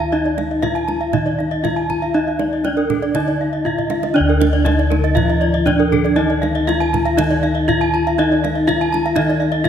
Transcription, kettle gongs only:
Already playing: D#3
0.13 D#4
0.64 D#4
1.13 D#3
1.63 D#4
2.15 D#4
2.64 D#4
3.14 D3
3.65 D#4
4.15 D4
4.20 D2
4.66 D#4
5.68 D#4
6.18 D#4
6.67 D#4
7.18 D#3
7.70 D#4
8.19 D#4
8.68 D#4
9.18 D#3
9.65 D#4

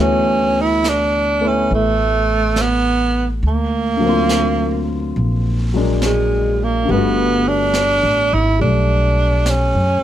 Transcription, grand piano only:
Already playing: E3 A3 B3 F#4 C#5
1.41 A3 B3 E4
3.97 D3 F#3
4.02 A#3 C4
4.09 F4
5.74 F#3 G#3 A#3 D4
6.85 D3 G3
6.91 A3 B3
6.96 F#4
8.59 G3 A3

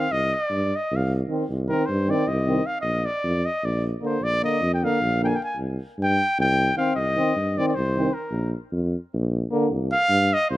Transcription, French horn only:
1.30 C4
1.69 C4
2.09 C4
2.47 C4
4.02 A#3
4.43 A#3
4.83 A#3
5.22 A#3
6.78 C4
7.17 C4
7.58 C4
7.96 C4
9.51 A#3

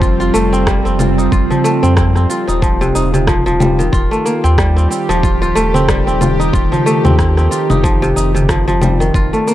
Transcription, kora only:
Already playing: D#3 F3 G3 A#3 C4
0.02 F4
0.20 F4
0.34 A3
0.53 C4
0.67 G3
0.85 C4
0.99 F4
1.18 D#4
1.32 F4
1.50 F3
1.64 A3
1.83 C4
1.97 C4
2.16 C4
2.30 F4
2.48 D#4
2.62 F3
2.81 C3
2.95 D#4
3.14 C3
3.28 F3
3.46 F3
3.60 G3
3.79 D#3
3.93 F4
4.11 A3
4.25 A#3
4.44 C4
4.58 G3
4.76 C4
4.90 C4
5.09 F3
5.23 F4
5.42 F4
5.55 A3
5.74 C4
5.89 G3
6.07 C4
6.21 F4
6.39 D#4
6.53 F4
6.72 F3
6.86 A3
7.05 C4
7.19 C4
7.37 C4
7.51 F4
7.70 D#4
7.84 F3
8.02 C3
8.16 D#4
8.35 C3
8.49 F3
8.68 F3
8.81 G3
9.00 D#3
9.15 F4
9.33 A3
9.47 A#3

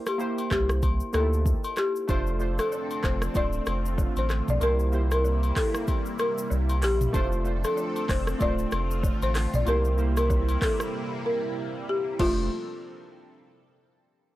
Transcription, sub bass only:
0.51 C2
1.14 D2
2.09 F1
3.04 F1
3.35 D1
3.67 F1
4.17 A1
4.48 A#1
4.61 C2
6.51 C2
6.83 A#1
7.14 F1
8.09 F1
8.41 D1
8.72 F1
9.22 A1
9.54 A#1
9.67 C2
12.20 F1

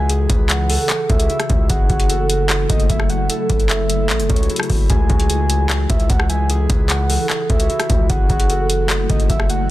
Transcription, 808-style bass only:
Already playing: C#2
0.30 C#2
1.10 C#2
1.50 C#2
1.70 F#1
1.90 F#1
2.70 F#1
2.90 F#1
3.50 F#1
4.10 A1
4.20 F#1
4.30 C#2
4.70 F#1
4.90 C#2
5.09 C#2
5.90 C#2
6.10 C#2
6.70 C#2
7.50 C#2
7.90 C#2
8.10 F#1
8.30 F#1
9.10 F#1
9.30 F#1

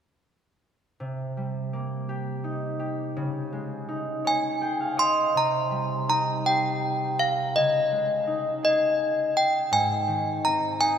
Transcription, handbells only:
4.27 G#5
4.99 C6
5.37 A#5
6.10 A#5
6.46 G5
7.19 F5
7.56 D#5
8.65 D#5
9.37 G5
9.73 G#5
10.45 A#5
10.81 G#5

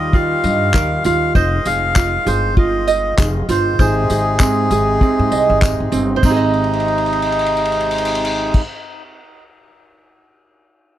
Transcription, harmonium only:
Already playing: D#3 G3 F4
1.36 G#3
3.78 C3 D#4
6.23 C3 G#3 D#4

